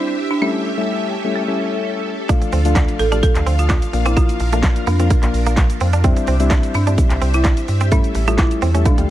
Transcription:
Already playing: synth keys G3 C4 D4 E4, marimba D4, string machine D4 G4 C5 E5
0.31 marimba D4
0.41 synth keys G3 A3 C#4 E4, string machine C#4 A4, marimba C#4
0.77 synth keys G3 A3 C#4 E4
1.24 synth keys G3 A3 C#4 E4
1.36 marimba A3
1.48 synth keys G3 A3 C#4 E4
2.29 synth keys F3 A3 D4 F4, string machine D4 F4 F5, clean electric guitar D4, kick, closed hi-hat, shaker
2.42 muted clean electric guitar stroke, closed hi-hat, shaker
2.52 sub bass D2, clean electric guitar C4, open hi-hat, shaker
2.65 synth keys F3 A3 D4 F4, closed hi-hat, shaker
2.75 clean electric guitar D4, kick, snare, clap, closed hi-hat, shaker
2.88 closed hi-hat, shaker
2.99 sub bass A1, marimba A4, muted clean electric guitar stroke, open hi-hat, shaker
3.12 synth keys F3 A3 D4 F4, clean electric guitar D4, marimba G4, closed hi-hat, shaker
3.23 marimba A4, kick, closed hi-hat, shaker
3.35 sub bass D2, clap, closed hi-hat, shaker
3.46 sub bass D2, clean electric guitar C4, open hi-hat, shaker
3.59 marimba F4, closed hi-hat, shaker
3.69 clean electric guitar D4, marimba F4, kick, snare, clap, closed hi-hat, shaker
3.82 closed hi-hat, shaker
3.93 sub bass A#1, synth keys F3 A#3 D4 F4, string machine D4 A#4, muted clean electric guitar stroke, open hi-hat, shaker
4.06 clean electric guitar C4, marimba E4, closed hi-hat, shaker
4.16 clean electric guitar A#3, marimba F4, kick, closed hi-hat, shaker
4.29 closed hi-hat, shaker
4.40 sub bass A#1, muted clean electric guitar stroke, open hi-hat, shaker
4.52 synth keys F3 A#3 D4 F4, clean electric guitar A3, closed hi-hat, shaker
4.63 muted clean electric guitar stroke, kick, snare, clap, closed hi-hat, shaker
4.76 closed hi-hat, shaker
4.87 sub bass F2, clean electric guitar A#3, marimba D4, open hi-hat, shaker
4.99 synth keys F3 A#3 D4 F4, clean electric guitar C4, closed hi-hat, shaker
5.10 clean electric guitar A#3, kick, closed hi-hat, shaker
5.23 sub bass A#1, synth keys F3 A#3 D4 F4, muted clean electric guitar stroke, clap, closed hi-hat, shaker
5.34 sub bass A#1, open hi-hat, shaker
5.46 clean electric guitar A#3, closed hi-hat, shaker
5.57 muted clean electric guitar stroke, kick, snare, clap, closed hi-hat, shaker
5.70 closed hi-hat, shaker
5.81 sub bass F2, clean electric guitar C4, open hi-hat, shaker
5.93 clean electric guitar D4, closed hi-hat, shaker
6.04 synth keys G3 C4 D4 E4, clean electric guitar C4, string machine G4 C5 E5, kick, closed hi-hat, shaker
6.17 muted clean electric guitar stroke, closed hi-hat, shaker
6.27 sub bass C2, clean electric guitar C4, open hi-hat, shaker
6.40 synth keys G3 C4 D4 E4, closed hi-hat, shaker
6.50 clean electric guitar D4, kick, snare, clap, closed hi-hat, shaker
6.63 closed hi-hat, shaker
6.74 sub bass G2, marimba D4, muted clean electric guitar stroke, open hi-hat, shaker
6.87 synth keys G3 C4 D4 E4, clean electric guitar D4, closed hi-hat, shaker
6.98 kick, closed hi-hat, shaker
7.10 sub bass C2, clap, closed hi-hat, shaker
7.21 sub bass C2, clean electric guitar C4, open hi-hat, shaker
7.34 marimba E4, closed hi-hat, shaker
7.44 clean electric guitar D4, kick, snare, clap, closed hi-hat, shaker
7.57 closed hi-hat, shaker
7.68 sub bass G2, muted clean electric guitar stroke, open hi-hat, shaker
7.81 clean electric guitar C4, closed hi-hat, shaker
7.92 synth keys G3 A3 C#4 E4, clean electric guitar A3, marimba C#4, string machine C#4 A4, kick, closed hi-hat, shaker
8.04 closed hi-hat, shaker
8.15 sub bass A1, muted clean electric guitar stroke, open hi-hat, shaker
8.27 synth keys G3 A3 C#4 E4, clean electric guitar A3, marimba F4, closed hi-hat, shaker
8.38 marimba E4, muted clean electric guitar stroke, kick, snare, clap, closed hi-hat, shaker
8.51 closed hi-hat, shaker
8.62 sub bass E2, clean electric guitar C4, open hi-hat, shaker
8.74 synth keys G3 A3 C#4 E4, clean electric guitar C#4, closed hi-hat, shaker
8.85 synth keys F3 A3 D4 F4, clean electric guitar A3, marimba D4, string machine D4 F4 F5, kick, closed hi-hat, high tom, shaker
8.98 sub bass D2, synth keys F3 A3 D4 G4, muted clean electric guitar stroke, closed hi-hat, high tom, shaker

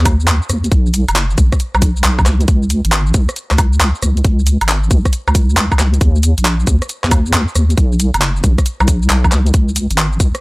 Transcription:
0.00 wobble bass D#2
0.05 kick, open hi-hat, high woodblock, shaker
0.20 shaker
0.28 wobble bass D#2, clap, closed hi-hat, shaker
0.42 shaker
0.49 wobble bass D#2, cross-stick, open hi-hat, shaker
0.64 closed hi-hat, shaker
0.71 wobble bass B1, kick, closed hi-hat, shaker
0.86 shaker
0.94 open hi-hat, shaker
1.08 wobble bass F#1, closed hi-hat, high woodblock, shaker
1.16 clap, closed hi-hat, shaker
1.30 shaker
1.38 wobble bass B1, kick, open hi-hat, shaker
1.52 kick, cross-stick, closed hi-hat, shaker
1.60 closed hi-hat, shaker
1.74 wobble bass B1, cross-stick, high woodblock, shaker
1.82 kick, open hi-hat, shaker
1.97 shaker
2.04 wobble bass B1, clap, closed hi-hat, shaker
2.19 kick, high woodblock, shaker
2.26 wobble bass C#2, cross-stick, clap, open hi-hat, shaker
2.41 closed hi-hat, shaker
2.48 wobble bass C#2, kick, closed hi-hat, shaker
2.63 shaker
2.70 open hi-hat, shaker
2.85 wobble bass G#1, closed hi-hat, shaker
2.92 clap, closed hi-hat, shaker
3.07 shaker
3.14 wobble bass C#2, kick, open hi-hat, shaker
3.29 cross-stick, closed hi-hat, shaker
3.36 closed hi-hat, shaker
3.51 wobble bass C#2, cross-stick, clap, shaker
3.58 kick, open hi-hat, high woodblock, shaker
3.73 shaker
3.80 wobble bass C#2, clap, closed hi-hat, shaker
3.95 shaker
4.02 wobble bass C#2, cross-stick, open hi-hat, shaker
4.17 closed hi-hat, shaker
4.25 wobble bass C#2, kick, closed hi-hat, shaker
4.39 shaker
4.47 open hi-hat, shaker
4.61 wobble bass G#1, closed hi-hat, high woodblock, shaker
4.69 clap, closed hi-hat, shaker
4.83 shaker
4.91 wobble bass C#2, kick, open hi-hat, shaker
5.05 kick, cross-stick, closed hi-hat, shaker
5.13 closed hi-hat, shaker
5.27 wobble bass C#2, cross-stick, high woodblock, shaker
5.35 kick, open hi-hat, shaker
5.50 shaker
5.57 wobble bass C#2, clap, closed hi-hat, shaker
5.72 kick, high woodblock, shaker
5.79 wobble bass C#2, cross-stick, clap, open hi-hat, shaker
5.94 closed hi-hat, shaker
6.01 wobble bass D#2, kick, closed hi-hat, shaker
6.16 shaker
6.23 open hi-hat, shaker
6.38 wobble bass A#1, closed hi-hat, shaker
6.45 clap, closed hi-hat, shaker
6.60 shaker
6.67 wobble bass D#2, kick, open hi-hat, shaker
6.82 cross-stick, closed hi-hat, shaker
6.89 closed hi-hat, shaker
7.04 wobble bass D#2, cross-stick, clap, shaker
7.11 kick, open hi-hat, high woodblock, shaker
7.26 shaker
7.33 wobble bass D#2, clap, closed hi-hat, shaker
7.48 shaker
7.55 wobble bass D#2, cross-stick, open hi-hat, shaker
7.70 closed hi-hat, shaker
7.77 wobble bass B1, kick, closed hi-hat, shaker
7.92 shaker
8.00 open hi-hat, shaker
8.14 wobble bass F#1, closed hi-hat, high woodblock, shaker
8.22 clap, closed hi-hat, shaker
8.36 shaker
8.44 wobble bass B1, kick, open hi-hat, shaker
8.58 kick, cross-stick, closed hi-hat, shaker
8.66 closed hi-hat, shaker
8.80 wobble bass B1, cross-stick, high woodblock, shaker
8.88 kick, open hi-hat, shaker
9.02 shaker
9.10 wobble bass B1, clap, closed hi-hat, shaker
9.24 kick, high woodblock, shaker
9.32 wobble bass C#2, cross-stick, clap, open hi-hat, shaker
9.46 closed hi-hat, shaker
9.54 wobble bass C#2, kick, closed hi-hat, shaker
9.69 shaker
9.76 open hi-hat, shaker
9.91 wobble bass G#1, closed hi-hat, shaker
9.98 clap, closed hi-hat, shaker
10.13 shaker
10.20 wobble bass C#2, kick, open hi-hat, shaker
10.35 cross-stick, closed hi-hat, shaker

